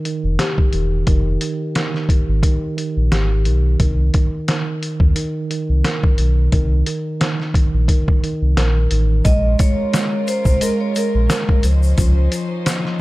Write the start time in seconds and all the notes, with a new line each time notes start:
Already playing: D#3
0.05 D#3, closed hi-hat
0.24 F1
0.39 G4, snare, closed hi-hat
0.58 kick
0.73 E1 D#3, closed hi-hat
1.07 F1 D#3, kick, closed hi-hat
1.41 D#3, closed hi-hat
1.75 D#3, snare, closed hi-hat
1.94 snare
2.09 kick, closed hi-hat
2.29 G#1
2.43 D#3, kick, closed hi-hat
2.77 D#3, closed hi-hat
2.97 A#1
3.12 G#1 G4, snare, closed hi-hat
3.45 B1 D#3, closed hi-hat
3.80 C2 D#3, kick, closed hi-hat
4.14 D#3, kick, closed hi-hat
4.48 D#3, snare, closed hi-hat
4.83 closed hi-hat
5.00 D#2, kick
5.16 D#3, closed hi-hat
5.50 D#3, closed hi-hat
5.69 C2
5.85 A#4, snare, closed hi-hat
6.04 kick
6.18 B1 D#3, closed hi-hat
6.52 C2 D#3, kick, closed hi-hat
6.86 D#3, closed hi-hat
7.20 D#3, snare, closed hi-hat
7.40 snare
7.54 kick, closed hi-hat
7.74 A#1
7.88 D#3, kick, closed hi-hat
8.08 kick
8.23 D#3, closed hi-hat
8.42 C2
8.57 A#1 A#4, snare, closed hi-hat
8.91 A1 D#3, closed hi-hat
9.25 A#1 G#3 C#4 F4 A#4 D#5, kick, closed hi-hat, shaker
9.59 G#3 C#5, kick, closed hi-hat, shaker
9.93 G#3, snare, closed hi-hat, shaker
10.28 C5, closed hi-hat, shaker
10.45 C2, kick, shaker
10.61 G#3 A#4, closed hi-hat, shaker
10.81 C#5
10.96 G#3 A#4, closed hi-hat, shaker
11.15 A#1
11.30 A#4, snare, closed hi-hat, shaker
11.49 kick
11.63 C#2 F3 D#4 C5, closed hi-hat, shaker
11.83 shaker
11.98 C#2 F3, kick, closed hi-hat, shaker
12.32 F3, closed hi-hat, shaker
12.66 F3, snare, closed hi-hat, shaker
12.85 snare